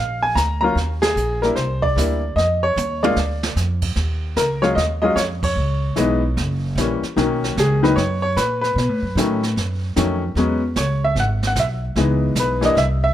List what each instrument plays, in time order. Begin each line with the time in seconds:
Already playing: upright bass A#1, upright piano F5
0.23 upright piano G#5
0.35 upright bass D2, upright piano A#5, snare, hi-hat pedal
0.61 upright piano F#3 A#3 C#4 F4 A#5
0.75 upright bass D#2, brush sweep, snare
1.02 upright piano G#4, snare, ride
1.16 upright bass A#1, hi-hat pedal
1.42 upright piano G3 A#3 D4 E4 A#4, snare
1.56 upright bass C2, upright piano C5, brush sweep, snare
1.82 upright piano D5, kick
1.96 upright bass D2, upright piano G3 A#3 D4 E4, snare, hi-hat pedal
2.36 upright bass F2, upright piano D#5, brush sweep, snare
2.63 upright piano C#5
2.76 upright bass D#2, hi-hat pedal, high tom
3.03 upright piano G#3 A#3 D4 F4 D5, high tom
3.16 upright bass D2, snare
3.43 snare
3.56 upright bass F2, snare, hi-hat pedal
3.82 kick, crash
3.96 upright bass D#2, brush sweep, snare
4.36 upright bass C#2, upright piano A#4, snare, hi-hat pedal
4.62 upright piano F#3 G#3 C#4 F4 C#5, snare
4.75 upright bass D#2, upright piano D#5, brush sweep, snare
5.02 upright piano F#3 G#3 C#4 F4 D#5
5.16 upright bass F2, upright piano C#5, snare, hi-hat pedal
5.43 upright piano C#5, kick, crash
5.56 upright bass C#2, brush sweep
5.96 upright bass B1, upright piano E3 G#3 B3 D#4, snare, hi-hat pedal
6.37 upright bass F#1, brush sweep, snare
6.76 upright bass A#1, upright piano E3 G3 A#3, snare, hi-hat pedal
6.80 upright piano C#4
7.03 muted upright bass stroke, snare
7.16 upright bass B1, upright piano D#3 F#3 A#3 C#4, brush sweep, snare
7.44 snare
7.56 upright bass C#2, upright piano G#4, snare, hi-hat pedal
7.83 upright piano D#3 F#3 A#3 D#4 B4, snare
7.96 upright bass F#2, upright piano C#5, brush sweep, snare
8.22 upright piano C#5
8.36 upright bass A#2, upright piano B4, snare, hi-hat pedal
8.61 upright piano B4, snare
8.76 upright bass B2, brush sweep, snare
8.89 upright bass A2
9.02 upright bass F#2
9.15 upright bass A2, upright piano D#3 F#3 A3 C#4, snare, hi-hat pedal
9.43 snare
9.56 upright bass F#2, brush sweep, snare
9.96 upright bass F2, upright piano D#3 F#3 A3 C#4, snare, hi-hat pedal
10.35 upright bass E2, upright piano F#3 G#3 B3 C#4, brush sweep, snare
10.76 upright bass C#2, upright piano C#5, snare, hi-hat pedal
11.04 upright piano E5
11.15 upright bass G#1, brush sweep, snare
11.20 upright piano F#5
11.43 snare
11.47 upright piano F#5
11.55 upright bass B1, snare, hi-hat pedal
11.60 upright piano E5
11.96 upright bass C#2, upright piano E3 G#3 B3 D#4, brush sweep, snare
12.35 upright bass B1, snare, hi-hat pedal
12.40 upright piano B4
12.61 upright piano E3 G3 A#3 D4 D#5, snare
12.75 upright bass C2, upright piano E5, brush sweep, snare
13.04 upright piano E5